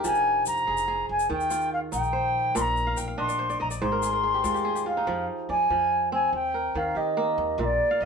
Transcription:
0.00 1.00 D4 medium
0.00 1.05 D#4 medium
0.00 1.04 F4 medium
0.00 0.73 G4 medium
0.00 1.11 A#4 medium
0.00 0.30 C5 medium
0.04 0.43 F1 medium
0.04 1.35 F3 medium
0.04 0.44 G#5 loud
0.04 shaker medium
0.15 shaker soft
0.46 0.66 F1 medium
0.46 1.06 A#5 loud
0.46 shaker medium
0.57 shaker soft
0.67 1.06 F1 medium
0.67 0.87 G#4 medium
0.77 shaker medium
0.88 2.24 G#4 medium
1.09 1.28 F1 medium
1.09 1.29 G#5 medium
1.19 shaker soft
1.30 1.89 D#2 medium
1.30 2.61 D#3 medium
1.30 1.70 G5 medium
1.40 shaker soft
1.50 3.02 F4 medium
1.50 shaker medium
1.61 shaker soft
1.73 1.79 F5 medium
1.92 2.52 A#1 medium
1.92 3.24 D#4 medium
1.92 2.58 G5 loud
1.92 shaker medium
2.03 shaker soft
2.13 3.32 C5 medium
2.55 2.94 A#1 medium
2.55 3.87 A#2 medium
2.55 2.62 C6 medium
2.55 shaker medium
2.61 2.98 A#5 loud
2.77 shaker soft
2.87 3.07 F5 medium
2.97 3.17 A#1 medium
2.97 3.88 G5 medium
2.97 shaker medium
3.08 4.07 F5 medium
3.18 3.57 A#1 medium
3.18 3.66 D4 medium
3.18 3.56 D#5 medium
3.18 3.58 C6 medium
3.28 3.49 D5 medium
3.28 shaker soft
3.39 3.81 C5 medium
3.50 3.70 D5 medium
3.50 shaker soft
3.60 3.80 A#1 medium
3.60 4.67 D#5 medium
3.60 3.67 A#5 medium
3.71 4.81 D5 medium
3.71 shaker soft
3.82 4.41 G#1 medium
3.82 5.13 G#2 medium
3.82 5.00 C5 medium
3.82 4.83 C6 medium
3.92 4.12 A#4 medium
4.02 4.23 G#4 medium
4.02 shaker medium
4.13 5.40 A#4 medium
4.23 4.60 G#4 medium
4.34 4.54 G4 medium
4.44 5.03 D#2 medium
4.44 5.13 G#3 medium
4.44 4.86 F4 medium
4.44 shaker medium
4.54 4.75 G4 medium
4.54 shaker soft
4.65 6.01 G#4 medium
4.75 6.16 G4 medium
4.75 shaker soft
4.86 6.37 F4 medium
4.86 5.26 F5 medium
4.97 5.56 D#4 medium
5.07 5.26 F2 loud
5.07 5.69 F3 medium
5.49 5.68 F2 medium
5.49 6.60 D5 medium
5.49 6.09 G#5 loud
5.70 6.29 F2 medium
5.70 6.38 F3 medium
6.12 7.92 C4 medium
6.12 6.33 G#5 medium
6.33 6.71 D#2 medium
6.33 6.78 G5 medium
6.54 7.81 A#4 medium
6.75 6.94 D#2 medium
6.75 7.64 D#3 medium
6.75 6.98 F5 medium
6.95 7.34 D#3 medium
6.95 8.05 G4 medium
6.95 7.62 D#5 medium
7.17 8.05 A#3 medium
7.38 7.57 D#2 loud
7.58 7.77 A#1 loud
7.58 8.05 A#2 medium
7.58 7.65 F5 medium
7.64 8.04 D5 loud
7.91 8.05 F5 medium
8.00 8.05 A#1 medium
8.00 8.05 D#5 medium

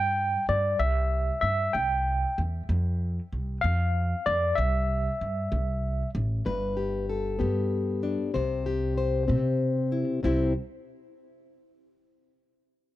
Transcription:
0.00 0.35 G2 medium
0.00 0.45 G5 loud
0.49 0.73 G2 medium
0.49 0.81 D5 medium
0.79 1.29 C2 medium
0.79 1.40 E5 medium
1.41 1.67 G2 medium
1.41 1.74 E5 medium
1.73 2.24 C2 medium
1.73 2.40 G5 medium
2.38 2.62 E2 medium
2.69 3.18 F2 medium
3.33 3.57 C2 medium
3.61 4.13 F2 medium
3.61 4.27 F5 medium
4.26 4.51 F2 medium
4.26 4.58 D5 medium
4.55 5.07 C2 medium
4.55 6.09 E5 medium
5.21 5.45 G2 medium
5.52 6.01 C2 medium
6.15 6.39 A1 medium
6.45 7.42 G1 medium
6.45 8.34 G2 medium
6.45 7.08 B4 medium
6.77 7.39 G4 medium
7.09 8.31 A4 medium
7.39 8.15 G2 medium
7.39 8.30 B3 medium
7.39 8.66 G4 soft
8.03 8.31 D4 medium
8.34 9.31 C2 medium
8.34 10.22 C3 medium
8.34 8.96 C5 medium
8.66 9.27 G4 medium
8.98 10.20 C5 medium
9.28 10.04 C3 medium
9.28 10.19 C4 medium
9.28 10.19 G4 medium
9.92 10.20 E4 medium
10.23 10.53 C2 medium
10.23 10.52 C3 medium
10.23 10.52 C4 medium
10.23 10.53 E4 medium
10.23 10.53 G4 medium
10.23 10.53 C5 medium

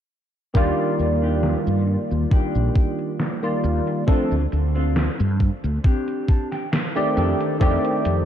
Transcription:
0.54 0.70 D#2 medium
0.54 3.37 D#3 medium
0.54 3.37 G3 medium
0.54 3.38 A#3 medium
0.54 0.88 D4 loud
0.54 0.89 D#4 loud
0.54 3.38 F4 medium
0.54 0.89 G4 loud
0.54 3.38 D5 medium
0.54 kick loud
0.54 closed hi-hat medium
0.78 closed hi-hat soft
0.99 1.54 D#2 medium
0.99 closed hi-hat medium
1.22 1.55 D4 medium
1.22 1.55 D#4 medium
1.22 1.55 G4 medium
1.22 closed hi-hat soft
1.43 snare loud
1.43 closed hi-hat medium
1.66 1.95 G2 medium
1.66 closed hi-hat soft
1.87 muted clean electric guitar stroke soft
1.87 closed hi-hat soft
2.11 2.25 D#2 medium
2.11 closed hi-hat soft
2.31 3.09 D4 medium
2.31 3.09 D#4 medium
2.31 3.10 G4 medium
2.31 muted fretless electric bass stroke soft
2.31 kick loud
2.31 closed hi-hat medium
2.55 2.69 A#1 medium
2.55 closed hi-hat soft
2.75 kick medium
2.75 closed hi-hat medium
2.99 closed hi-hat soft
3.20 snare loud
3.20 closed hi-hat medium
3.42 4.03 D#3 medium
3.42 4.03 G3 medium
3.42 4.03 A#3 medium
3.42 4.03 F4 medium
3.42 4.03 D5 medium
3.42 closed hi-hat soft
3.64 3.79 D#2 medium
3.64 closed hi-hat medium
3.86 muted clean electric guitar stroke medium
3.86 closed hi-hat soft
4.07 4.34 F3 medium
4.07 4.34 A3 medium
4.07 4.41 C4 loud
4.07 4.34 C4 medium
4.07 4.34 D4 medium
4.07 4.42 D4 loud
4.07 4.42 F4 loud
4.07 4.35 A4 medium
4.07 muted fretless electric bass stroke soft
4.07 kick loud
4.07 closed hi-hat medium
4.31 4.45 D2 medium
4.31 closed hi-hat soft
4.52 5.07 D2 medium
4.52 closed hi-hat medium
4.75 5.07 C4 medium
4.75 5.08 D4 medium
4.75 5.09 F4 medium
4.75 closed hi-hat soft
4.96 snare loud
4.96 closed hi-hat medium
5.20 5.48 G2 medium
5.20 closed hi-hat soft
5.40 muted clean electric guitar stroke soft
5.40 kick medium
5.40 closed hi-hat soft
5.64 5.78 D2 medium
5.64 closed hi-hat soft
5.84 6.62 C4 medium
5.84 6.62 D4 medium
5.84 6.63 G4 medium
5.84 kick loud
5.84 closed hi-hat medium
6.08 closed hi-hat soft
6.28 6.50 A5 medium
6.28 kick medium
6.28 closed hi-hat medium
6.52 6.71 G5 medium
6.52 snare soft
6.52 closed hi-hat soft
6.72 7.13 F5 medium
6.72 snare loud
6.72 closed hi-hat medium
6.96 7.56 D#3 medium
6.96 7.56 A3 medium
6.96 7.56 C4 medium
6.96 7.56 G4 medium
6.96 7.56 D5 medium
6.96 closed hi-hat soft
7.15 7.32 F2 medium
7.15 8.04 D4 medium
7.15 8.05 D#4 medium
7.15 8.05 G4 medium
7.15 8.05 A4 loud
7.15 7.58 D5 medium
7.15 closed hi-hat medium
7.40 closed hi-hat soft
7.59 7.76 F2 medium
7.59 8.25 D#3 medium
7.59 8.25 A3 medium
7.59 8.25 C4 medium
7.59 8.25 G4 medium
7.59 8.25 D5 medium
7.59 kick loud
7.59 closed hi-hat medium
7.85 closed hi-hat soft
8.05 8.25 F2 medium
8.05 closed hi-hat medium

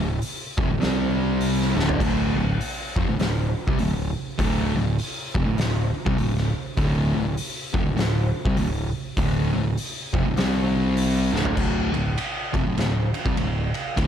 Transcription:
0.00 0.19 D1 medium
0.00 0.17 D2 medium
0.00 0.17 A2 medium
0.22 open hi-hat medium
0.57 0.68 F1 loud
0.57 0.69 F2 medium
0.57 0.69 C3 loud
0.57 kick loud
0.68 0.79 D1 medium
0.68 0.80 D2 medium
0.68 0.80 A2 medium
0.80 1.73 C2 medium
0.80 1.75 C3 loud
0.80 1.76 G3 loud
0.80 1.76 C4 loud
0.80 snare loud
0.80 open hi-hat medium
1.41 open hi-hat medium
1.61 snare soft
1.76 1.98 D1 loud
1.76 1.98 D2 medium
1.76 1.99 A2 loud
1.76 2.00 D3 loud
1.76 snare medium
1.89 floor tom loud
2.00 2.34 D1 loud
2.00 2.35 D2 medium
2.00 2.35 A2 medium
2.00 2.36 D3 loud
2.00 kick loud
2.00 open hi-hat medium
2.00 crash medium
2.36 2.58 D1 medium
2.36 2.55 D2 medium
2.36 2.55 A2 medium
2.61 open hi-hat medium
2.96 3.07 F1 loud
2.96 3.08 F2 medium
2.96 3.08 C3 loud
2.96 kick loud
3.08 3.18 D1 medium
3.08 3.18 D2 medium
3.08 3.18 A2 medium
3.19 3.53 D1 medium
3.19 3.49 D2 medium
3.19 3.49 A2 medium
3.19 snare loud
3.19 open hi-hat medium
3.67 3.78 C2 medium
3.67 3.79 C3 medium
3.67 3.79 G3 medium
3.67 kick loud
3.79 4.14 D1 medium
3.79 4.09 D2 medium
3.79 4.09 A2 medium
3.79 open hi-hat medium
4.39 4.73 D1 medium
4.39 4.74 D2 medium
4.39 4.75 A2 medium
4.39 4.75 D3 loud
4.39 kick loud
4.39 open hi-hat medium
4.75 4.97 D1 medium
4.75 4.94 D2 medium
4.75 4.94 A2 medium
4.99 open hi-hat medium
5.34 5.46 F1 loud
5.34 5.45 F2 medium
5.34 5.46 C3 loud
5.34 kick loud
5.46 5.57 D1 medium
5.46 5.57 D2 medium
5.46 5.57 A2 medium
5.58 5.92 D1 medium
5.58 5.87 D2 medium
5.58 5.88 A2 medium
5.58 snare loud
5.58 open hi-hat medium
6.06 6.17 C2 medium
6.06 6.17 C3 medium
6.06 6.17 G3 medium
6.06 kick loud
6.18 6.52 D1 medium
6.18 6.47 D2 medium
6.18 6.48 A2 medium
6.18 open hi-hat medium
6.37 snare soft
6.77 7.12 D1 loud
6.77 7.12 D2 loud
6.77 7.13 A2 loud
6.77 7.13 D3 loud
6.77 kick loud
6.77 open hi-hat medium
7.13 7.36 D1 medium
7.13 7.32 D2 medium
7.13 7.33 A2 medium
7.37 open hi-hat medium
7.73 7.83 F1 loud
7.73 7.85 F2 medium
7.73 7.85 C3 medium
7.73 kick loud
7.84 7.96 D1 medium
7.84 7.95 D2 medium
7.84 7.96 A2 medium
7.97 8.31 D1 medium
7.97 8.26 D2 medium
7.97 8.27 A2 medium
7.97 snare loud
7.97 open hi-hat medium
8.45 8.56 C2 loud
8.45 8.57 C3 medium
8.45 8.57 G3 medium
8.45 kick loud
8.56 8.91 D1 medium
8.56 8.87 D2 medium
8.56 8.87 A2 medium
8.56 open hi-hat medium
9.17 9.51 D1 loud
9.17 9.53 D2 medium
9.17 9.54 A2 loud
9.17 9.54 D3 loud
9.17 kick loud
9.17 open hi-hat medium
9.53 9.75 D1 medium
9.53 9.73 D2 medium
9.53 9.73 A2 medium
9.78 open hi-hat medium
10.13 10.24 F1 loud
10.13 10.24 F2 medium
10.13 10.25 C3 loud
10.13 kick loud
10.26 10.36 D2 medium
10.26 10.37 A2 medium
10.36 11.30 C2 loud
10.36 11.32 C3 medium
10.36 11.33 G3 loud
10.36 11.33 C4 loud
10.36 snare loud
10.36 open hi-hat medium
10.97 open hi-hat medium
11.33 11.55 D1 loud
11.33 11.54 D2 medium
11.33 11.55 A2 loud
11.33 11.56 D3 loud
11.33 snare medium
11.45 floor tom loud
11.56 11.91 D1 medium
11.56 11.91 D2 medium
11.56 11.92 A2 medium
11.56 11.93 D3 loud
11.56 kick loud
11.56 crash loud
11.92 12.15 D1 medium
11.92 12.12 D2 medium
11.92 12.12 A2 medium
11.92 ride medium
12.18 ride medium
12.53 12.65 F1 medium
12.53 12.64 F2 medium
12.53 12.65 C3 medium
12.53 kick loud
12.53 ride medium
12.65 12.77 D1 medium
12.65 12.76 D2 medium
12.65 12.76 A2 medium
12.77 13.12 D1 medium
12.77 13.07 D2 medium
12.77 13.07 A2 medium
12.77 snare loud
12.77 ride medium
13.14 ride medium
13.25 13.36 C2 medium
13.25 13.37 C3 medium
13.25 13.37 G3 medium
13.25 kick loud
13.37 13.72 D1 medium
13.37 13.67 D2 medium
13.37 13.67 A2 medium
13.37 ride medium
13.74 ride medium
13.97 14.07 D1 loud
13.97 14.07 D2 medium
13.97 14.07 A2 medium
13.97 14.07 D3 loud
13.97 kick loud
13.97 ride medium

